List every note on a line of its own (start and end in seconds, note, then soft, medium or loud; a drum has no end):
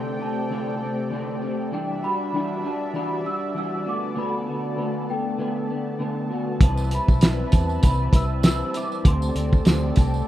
0.00 1.69 C3 medium
0.00 0.19 D3 medium
0.00 0.20 A3 medium
0.00 0.20 C4 medium
0.00 0.18 G4 medium
0.00 1.70 A4 medium
0.00 1.70 D5 medium
0.00 1.70 G5 medium
0.00 0.23 C6 medium
0.20 0.50 A3 soft
0.20 0.50 C4 soft
0.20 0.50 G4 medium
0.20 1.39 A5 medium
0.50 0.81 D3 medium
0.50 0.81 A3 medium
0.50 0.81 C4 medium
0.50 0.79 G4 medium
0.80 1.11 A3 soft
0.80 1.12 C4 soft
0.80 1.11 G4 soft
1.10 1.41 D3 medium
1.10 1.42 A3 medium
1.10 1.42 C4 medium
1.10 1.39 G4 medium
1.41 1.72 A3 soft
1.41 1.73 C4 medium
1.41 1.72 G4 medium
1.71 2.02 E3 medium
1.71 2.03 G3 medium
1.71 3.84 G3 medium
1.71 3.84 D4 medium
1.71 2.02 D4 medium
1.71 6.56 D5 medium
1.71 3.84 E5 medium
1.71 2.04 G5 medium
2.02 2.33 G3 soft
2.02 2.33 D4 soft
2.02 2.33 F#4 medium
2.02 2.66 B5 loud
2.33 2.63 E3 medium
2.33 2.64 G3 medium
2.33 2.64 D4 medium
2.33 2.62 F#4 medium
2.63 2.93 G3 soft
2.63 2.94 D4 medium
2.63 2.94 F#4 medium
2.63 2.93 A5 medium
2.93 3.24 E3 medium
2.93 3.25 G3 medium
2.93 3.25 D4 medium
2.93 3.23 F#4 medium
2.93 3.27 B5 loud
3.24 3.54 G3 soft
3.24 3.56 D4 soft
3.24 3.55 F#4 medium
3.24 3.57 E6 loud
3.54 3.85 E3 medium
3.54 3.86 G3 medium
3.54 3.86 D4 medium
3.54 3.83 F#4 medium
3.54 3.88 E6 medium
3.84 6.57 D3 medium
3.84 4.15 A3 soft
3.84 6.57 B3 medium
3.84 4.15 B3 medium
3.84 4.16 F#4 medium
3.84 6.57 A4 medium
3.84 10.28 A5 medium
3.88 4.19 D6 medium
4.15 4.46 D3 medium
4.15 4.47 A3 medium
4.15 4.46 B3 medium
4.15 4.44 F#4 medium
4.15 5.12 B5 medium
4.45 4.77 A3 soft
4.45 4.78 B3 soft
4.45 4.77 F#4 medium
4.76 5.07 D3 medium
4.76 5.08 A3 medium
4.76 5.07 B3 medium
4.76 5.09 F#4 medium
5.09 5.38 A3 soft
5.09 5.39 B3 soft
5.09 6.27 G5 medium
5.38 5.69 D3 medium
5.38 5.69 A3 medium
5.38 5.69 B3 medium
5.70 5.99 A3 soft
5.70 6.00 B3 soft
5.99 6.30 D3 medium
5.99 6.30 A3 medium
5.99 6.30 B3 medium
6.29 6.61 A3 medium
6.29 6.61 B3 medium
6.29 6.60 F#4 medium
6.60 6.98 C2 loud
6.60 6.91 C3 medium
6.60 6.91 E3 medium
6.60 6.91 G3 medium
6.60 10.28 C4 medium
6.60 6.92 C4 medium
6.60 6.90 E4 medium
6.60 9.03 B4 medium
6.60 6.89 B4 medium
6.60 9.03 E5 medium
6.60 6.93 A5 medium
6.60 kick loud
6.60 closed hi-hat medium
6.77 tambourine soft
6.91 7.20 G3 soft
6.91 7.21 C4 soft
6.91 7.22 E4 medium
6.91 7.21 B4 soft
6.91 closed hi-hat medium
6.91 tambourine soft
6.95 7.56 B5 medium
7.08 7.44 B1 medium
7.08 kick medium
7.08 tambourine soft
7.21 7.52 G3 medium
7.21 7.52 C4 medium
7.21 7.51 E4 medium
7.21 7.50 B4 medium
7.21 snare loud
7.21 closed hi-hat medium
7.21 tambourine medium
7.51 7.77 E2 medium
7.51 7.82 G3 soft
7.51 7.82 C4 soft
7.51 7.83 E4 medium
7.51 7.82 B4 medium
7.51 7.85 A5 medium
7.51 kick medium
7.51 closed hi-hat medium
7.51 tambourine soft
7.69 tambourine soft
7.82 8.08 C2 medium
7.82 8.13 C3 medium
7.82 8.13 E3 medium
7.82 8.13 G3 medium
7.82 8.14 C4 medium
7.82 8.12 E4 medium
7.82 8.11 B4 medium
7.82 8.15 B5 medium
7.82 kick medium
7.82 closed hi-hat medium
7.82 tambourine medium
8.12 8.62 C2 medium
8.12 8.42 G3 soft
8.12 8.43 C4 soft
8.12 8.44 E4 soft
8.12 8.43 B4 medium
8.12 kick medium
8.12 closed hi-hat medium
8.12 tambourine soft
8.16 8.45 E6 loud
8.43 8.74 G3 medium
8.43 8.75 C4 medium
8.43 8.74 E4 medium
8.43 8.72 B4 medium
8.43 8.76 E6 loud
8.43 snare loud
8.43 closed hi-hat medium
8.43 tambourine loud
8.74 9.05 G3 soft
8.74 9.05 C4 medium
8.74 9.05 E4 medium
8.74 9.04 B4 medium
8.74 9.07 D6 medium
8.74 closed hi-hat medium
8.74 tambourine soft
8.92 tambourine soft
9.05 9.29 D2 loud
9.05 9.35 D3 medium
9.05 9.36 A3 medium
9.05 9.36 C4 medium
9.05 9.34 G4 medium
9.05 10.28 A4 medium
9.05 10.28 D5 medium
9.05 10.00 C6 medium
9.05 kick loud
9.05 closed hi-hat medium
9.22 tambourine soft
9.35 9.60 D2 medium
9.35 9.66 A3 soft
9.35 9.67 C4 soft
9.35 9.66 G4 medium
9.35 closed hi-hat medium
9.35 tambourine soft
9.53 kick medium
9.53 tambourine soft
9.65 9.90 D2 medium
9.65 9.96 D3 medium
9.65 9.97 A3 medium
9.65 9.97 C4 medium
9.65 9.95 G4 medium
9.65 snare loud
9.65 closed hi-hat medium
9.65 tambourine medium
9.96 10.21 C2 medium
9.96 10.28 C4 soft
9.96 10.27 G4 medium
9.96 10.28 A5 medium
9.96 kick medium
9.96 closed hi-hat medium
9.96 tambourine soft
10.00 10.27 A3 soft
10.14 tambourine soft